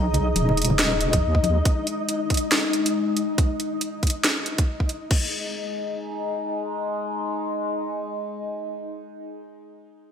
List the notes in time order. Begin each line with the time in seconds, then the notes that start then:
Already playing: B1 G#3 D#4 D#5
0.14 closed hi-hat, low conga
0.36 D#1, closed hi-hat, high conga
0.49 low conga
0.57 closed hi-hat
0.62 closed hi-hat
0.65 closed hi-hat
0.70 low conga
0.79 snare, closed hi-hat
1.01 closed hi-hat
1.13 kick, closed hi-hat, high conga
1.22 D#2
1.35 kick
1.43 closed hi-hat, high conga
1.65 kick, closed hi-hat
1.87 closed hi-hat
2.09 closed hi-hat
2.30 kick, closed hi-hat
2.34 closed hi-hat
2.37 closed hi-hat
2.52 snare, closed hi-hat
2.73 closed hi-hat
2.86 closed hi-hat
3.17 closed hi-hat
3.38 kick, closed hi-hat
3.60 closed hi-hat
3.81 closed hi-hat
4.03 kick, closed hi-hat
4.07 closed hi-hat
4.10 closed hi-hat
4.24 snare, closed hi-hat
4.46 closed hi-hat
4.58 kick, closed hi-hat
4.80 kick
4.89 closed hi-hat
5.11 G#3 D#4, kick, crash